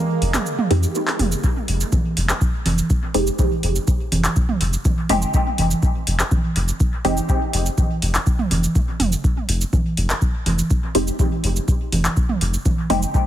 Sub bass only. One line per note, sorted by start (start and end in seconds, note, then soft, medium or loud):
0.22 0.37 F1 medium
0.71 0.85 F2 medium
1.19 1.34 F1 loud
1.68 1.83 F1 loud
2.17 2.32 F1 medium
2.66 2.81 F1 medium
3.14 3.29 F1 medium
3.63 3.78 F1 loud
4.12 4.27 F1 medium
4.61 4.76 F1 medium
5.09 5.24 F1 medium
5.58 5.73 F1 loud
6.07 6.22 F1 medium
6.56 6.71 F1 loud
7.05 7.20 F1 medium
7.53 7.68 F1 loud
8.02 8.17 F1 medium
8.51 8.66 F1 medium
9.00 9.15 F1 medium
9.48 9.63 F1 loud
9.97 10.12 F1 medium
10.46 10.61 F1 medium
10.95 11.10 F1 medium
11.44 11.59 F1 loud
11.92 12.07 F1 medium
12.41 12.56 F1 medium
12.90 13.05 F1 medium